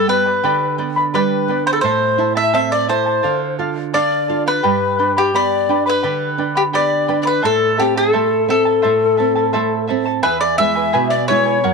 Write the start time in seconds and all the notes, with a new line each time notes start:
Already playing: G2
0.07 B3 B4 D5 G5 B5
0.26 B4 D5 B5
0.44 D3 G4 B4 D5 G5 B5
0.78 B3 B4 D5 G5 B5
0.96 B4 D5 B5
1.14 G3 G4 B4 D5 G5 B5
1.48 B3 B4 D5 G5 B5
1.66 B4 C5 D5 B5
1.73 A4
1.81 A2 E4 A4 C5 E5 A5
2.18 E4 A4 E5 A5
2.35 E4 A4 E5 A5
2.53 C4 E4 A4 C5 E5 A5
2.72 D5
2.88 E4 A4 C5 E5 A5
3.06 E4 A4 A5
3.23 D3 A4 D5 F5
3.58 F4 A4 D5 F5
3.76 D5 F5
3.93 D4 A4 D5 F5
4.28 F4 A4 D5 F5
4.46 B4 D5 F5
4.63 G2 G4 B4 D5 G5 B5
4.98 D4 B4 D5 G5 B5
5.17 G4 B4 D5 B5
5.34 B3 G4 B4 D5 G5 B5
5.69 D4 B4 D5 G5 B5
5.86 B4 D5 B5
6.03 D3 G4 B4 D5 G5 B5
6.38 D4 B4 D5 G5 B5
6.55 G4 B4 D5 B5
6.73 B3 G4 B4 D5 G5 B5
7.08 D4 B4 D5 G5 B5
7.22 D5 B5
7.26 B4 D5
7.42 A2 E4 A4 C5 E5 A5
7.77 C4 E4 G4 A4 E5 A5
7.96 E4 A4 A5
8.13 A3 E4 A4 C5 E5 A5
8.48 C4 E4 A4 E5 A5
8.65 E4 A4 A5
8.82 A2 E4 A4 C5 E5 A5
9.17 C4 E4 A4 E5 A5
9.35 E4 A4 A5
9.53 A3 E4 A4 C5 E5 A5
9.87 C4 E4 A4 E5 A5
10.05 E4 A4 A5
10.23 E2 E4 G#4 B4 E5 G#5
10.40 D5
10.58 G#3 B3 E4 B4 E5 G#5
10.75 E4 B4 G#5
10.93 B2 E4 G#4 B4 E5 G#5
11.10 D5
11.28 G#3 B3 E4 B4 C#5 E5 G#5
11.46 E4 B4 G#5
11.64 F#2 A#4 C#5 F#5